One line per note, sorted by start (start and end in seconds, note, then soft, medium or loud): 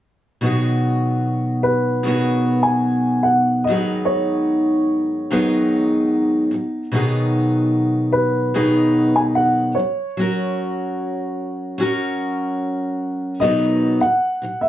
0.41 2.02 B2 medium
0.41 2.04 D#3 medium
0.41 2.04 F#3 medium
0.41 2.06 B3 medium
0.41 2.06 F#4 medium
0.45 2.07 G#4 medium
1.63 2.69 B4 medium
2.03 3.67 B2 medium
2.03 3.68 D#3 medium
2.03 3.69 F#3 medium
2.03 3.70 B3 medium
2.03 3.70 F#4 medium
2.07 3.71 G#4 medium
2.63 3.28 G#5 medium
3.23 3.63 F#5 medium
3.64 5.29 G#2 soft
3.64 3.74 D#5 medium
3.68 5.31 D#3 medium
3.68 5.31 F#3 medium
3.68 5.31 B3 medium
3.68 5.32 D#4 medium
3.68 5.32 G#4 medium
4.05 6.46 C#5 medium
5.30 6.50 G#2 medium
5.30 6.52 D#3 medium
5.30 6.54 F#3 medium
5.30 6.94 B3 medium
5.30 6.94 D#4 medium
5.30 6.57 G#4 medium
6.51 6.84 G#2 soft
6.51 6.85 D#3 soft
6.51 6.86 F#3 medium
6.92 8.53 B2 medium
6.92 8.54 D#3 medium
6.92 8.55 F#3 medium
6.92 8.55 B3 medium
6.92 8.55 D#4 medium
6.96 8.55 G#4 medium
8.12 9.18 B4 medium
8.54 9.76 B2 medium
8.54 9.76 D#3 medium
8.54 9.77 F#3 medium
8.54 9.77 B3 medium
8.54 9.77 D#4 medium
8.54 9.77 G#4 medium
9.16 9.21 G#5 medium
9.35 9.73 F#5 medium
9.75 10.09 F#3 soft
9.75 12.55 C#5 medium
9.79 10.10 C#4 soft
10.17 11.78 F#3 medium
10.17 11.79 C#4 medium
10.17 11.80 F#4 medium
10.17 11.81 A#4 medium
11.78 13.42 F#3 medium
11.78 13.41 C#4 medium
11.78 13.42 F#4 medium
11.82 13.42 A#4 medium
13.40 13.99 B2 medium
13.40 14.01 D#3 medium
13.40 14.02 F#3 medium
13.40 14.03 B3 medium
13.40 14.03 D#4 medium
13.40 14.03 G#4 medium
13.40 14.03 D#5 medium
14.00 14.34 B2 soft
14.00 14.64 F#5 medium
14.42 14.69 B2 soft
14.42 14.69 D#3 soft
14.42 14.69 F#3 soft
14.61 14.69 E5 medium